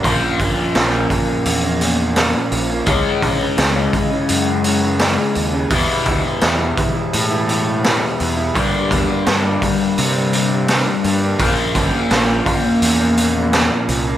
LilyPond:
<<
  \new Staff \with { instrumentName = "Clean electric guitar" } { \time 4/4 \key bes \lydian \tempo 4 = 84 <bes, f bes des'>8 <bes, f bes des'>16 <f bes des'>16 <bes, f bes des'>8 <bes, f bes des'>16 <bes des'>8 <bes des'>16 <bes, bes des'>16 <bes des'>16 <bes, bes des'>16 <f bes des'>8 <f bes des'>16 | <cis e gis cis'>8 <cis e gis cis'>16 <e gis cis'>16 <cis e gis cis'>8 <cis e gis cis'>16 <e gis cis'>8 <e gis cis'>16 <cis e gis cis'>16 <e gis cis'>16 <cis e gis cis'>16 <gis cis'>8 <e gis cis'>16 | <e g b e'>8 <e g b e'>16 <g b e'>16 <e g b e'>8 <e g b e'>16 <g b e'>8 <g b e'>16 <e g b e'>16 <g b e'>16 <e g b e'>16 <g b e'>8 <g b e'>16 | <g, d g bes d'>8 <d g bes d'>16 <g bes d'>16 <g, d g bes d'>8 <d g bes d'>16 <g bes d'>8 <g bes d'>16 <d g bes d'>16 <g bes d'>16 <g, d g bes d'>16 <g bes d'>8 <g bes d'>16 |
<bes, f bes des'>8 <bes, f bes des'>16 <f bes des'>16 <bes, f bes des'>8 <bes, f bes des'>16 <bes des'>8 <bes des'>16 <bes, bes des'>16 <bes des'>16 <bes, bes des'>16 <f bes des'>8 <f bes des'>16 | }
  \new Staff \with { instrumentName = "Overdriven electric guitar" } { \clef bass \time 4/4 \key bes \lydian <bes, f bes>1 | <cis gis cis'>1 | <e, b, e>1 | <g, d g>1 |
<bes, f bes>1 | }
  \new Staff \with { instrumentName = "Picked electric bass" } { \clef bass \time 4/4 \key bes \lydian bes,,16 r16 g,,16 r16 bes,,8 r8 e,4. bes,,8 | cis,16 r16 bes,,16 r16 cis,8 r8 fis,4. ees,8 | e,16 r16 d,16 r16 e,8 r8 a,4. e,8 | g,16 r16 e,16 r16 g,8 r8 c4. g,8 |
bes,,16 r16 g,,16 r16 bes,,8 r8 e,4. c,8 | }
  \new DrumStaff \with { instrumentName = "Drums" } \drummode { \time 4/4 <hho bd>8 <hho bd>8 <hho sn>8 <hho bd>8 hho8 hho8 <hho sn>8 hho8 | <hho bd>8 <hho bd>8 <hho sn>8 <hho bd>8 hho8 hho8 <hho sn>8 hho8 | <hho bd>8 <hho bd>8 <hho sn>8 <hho bd>8 hho8 hho8 <hho sn>8 hho8 | <hho bd>8 <hho bd>8 <hho sn>8 <hho bd>8 hho8 hho8 <hho sn>8 hho8 |
<hho bd>8 <hho bd>8 <hho sn>8 <hho bd>8 hho8 hho8 <hho sn>8 hho8 | }
>>